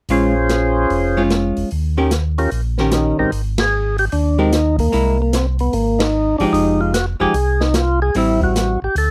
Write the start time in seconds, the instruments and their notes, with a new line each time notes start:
0.09 tonewheel organ A#1 C#4 F4 G#4 C5, hollow-body jazz guitar G#3 C#4 F4, open hi-hat
0.49 snare, closed hi-hat
0.90 tonewheel organ F1, open hi-hat
1.17 hollow-body jazz guitar G#3 C#4 F4
1.30 snare, closed hi-hat
1.57 tonewheel organ F1, open hi-hat
1.71 tonewheel organ D#2, open hi-hat
1.97 hollow-body jazz guitar D#3 C#4 G4 A#4
2.11 snare, closed hi-hat
2.38 tonewheel organ C#4 F4 G4 A#4, open hi-hat
2.51 tonewheel organ A#1, open hi-hat
2.78 hollow-body jazz guitar D#3 C#4 G4 A#4, snare
2.91 tonewheel organ D#4, snare, closed hi-hat
3.18 tonewheel organ A#1 G#2 C4 D#4 G4 A#4
3.32 tonewheel organ G#1, open hi-hat
3.58 tonewheel organ G#4, snare, ride
3.98 tonewheel organ G4, open hi-hat
4.12 tonewheel organ D#2 D4, open hi-hat
4.38 hollow-body jazz guitar G#3 C4 G4 A#4, tonewheel organ D#4
4.52 snare, closed hi-hat
4.79 tonewheel organ A#3, kick, open hi-hat
4.92 tonewheel organ C2, hollow-body jazz guitar G#3 A#3 E4, open hi-hat
5.22 tonewheel organ A#3
5.33 tonewheel organ C4, snare, closed hi-hat
5.59 tonewheel organ B3, open hi-hat
5.73 tonewheel organ G#1 A#3, open hi-hat
5.99 tonewheel organ D#4, snare, ride
6.38 tonewheel organ G#1 D4, hollow-body jazz guitar F3 G#3 D#4 G4, open hi-hat
6.52 tonewheel organ F1 D#4, open hi-hat
6.81 tonewheel organ F4
6.94 tonewheel organ F#4, snare, closed hi-hat
7.20 tonewheel organ F1 G#4, hollow-body jazz guitar F3 G#3 D#4 G4
7.34 tonewheel organ C2, open hi-hat
7.61 tonewheel organ D#4, snare
7.74 tonewheel organ F4, snare, closed hi-hat
8.02 tonewheel organ G#4
8.15 tonewheel organ A1 E4, hollow-body jazz guitar G3 C4 E4, open hi-hat
8.41 tonewheel organ F#4, kick
8.56 snare, closed hi-hat
8.82 tonewheel organ A1 G4
8.95 tonewheel organ D2 A4, open hi-hat